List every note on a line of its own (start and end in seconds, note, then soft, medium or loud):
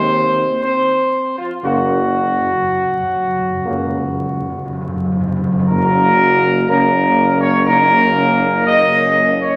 0.00 0.46 D#2 medium
0.00 0.59 C4 medium
0.00 0.61 C5 medium
0.62 1.35 C4 medium
0.62 1.34 C5 medium
1.38 1.50 F3 medium
1.38 1.49 F4 medium
1.63 2.48 F#1 medium
1.63 1.70 F#2 soft
1.63 2.03 C#3 medium
1.63 5.16 F#3 medium
1.63 2.03 A#3 medium
1.63 5.15 F#4 medium
1.71 1.79 F#2 soft
1.80 1.85 F#2 soft
1.87 1.93 F#2 soft
2.02 2.08 F#2 soft
2.10 2.16 F#2 soft
2.17 2.24 F#2 soft
2.25 2.31 F#2 soft
2.33 2.39 F#2 soft
2.41 2.48 F#2 soft
2.49 2.55 F#2 soft
2.56 2.63 F#2 soft
2.64 2.70 F#2 soft
2.71 2.78 F#2 soft
2.87 2.93 F#2 soft
2.94 3.02 F#2 soft
3.03 3.09 F#2 soft
3.10 3.17 F#2 soft
3.18 3.25 F#2 soft
3.26 3.32 F#2 soft
3.33 3.40 F#2 medium
3.41 3.48 F#2 medium
3.49 3.55 F#2 medium
3.56 3.62 F#2 medium
3.63 4.50 C#2 medium
3.63 3.70 F#2 medium
3.63 4.05 C#3 soft
3.63 4.05 A#3 medium
3.71 3.78 F#2 medium
3.79 3.85 F#2 medium
3.87 3.94 F#2 medium
3.95 4.01 F#2 medium
4.02 4.09 F#2 medium
4.10 4.17 F#2 medium
4.18 4.24 F#2 medium
4.26 4.33 F#2 medium
4.34 4.40 F#2 medium
4.41 4.48 F#2 medium
4.49 4.56 F#2 medium
4.57 4.64 F#2 medium
4.65 4.72 F#2 medium
4.73 4.80 F#2 medium
4.81 4.87 F#2 medium
4.88 4.95 F#2 medium
4.96 5.03 F#2 medium
5.04 5.10 F#2 medium
5.12 5.19 F#2 medium
5.20 5.27 F#2 medium
5.28 5.35 F#2 medium
5.36 5.42 F#2 medium
5.43 5.50 F#2 medium
5.51 5.58 F#2 medium
5.59 5.66 F#2 medium
5.69 9.56 F#1 medium
5.69 7.13 F#2 medium
5.69 6.64 C#3 medium
5.69 6.64 A#3 medium
5.69 6.65 F#4 medium
5.69 6.65 A#4 medium
6.68 7.62 C#3 medium
6.68 7.62 A#3 medium
6.68 7.62 C#4 medium
6.68 7.38 A#4 medium
7.41 7.64 C#5 medium
7.66 9.56 C#3 medium
7.66 9.56 A#3 medium
7.66 8.13 D#4 medium
7.66 8.63 A#4 medium
8.16 9.56 C#4 medium
8.66 9.36 D#5 loud
9.41 9.56 C#5 medium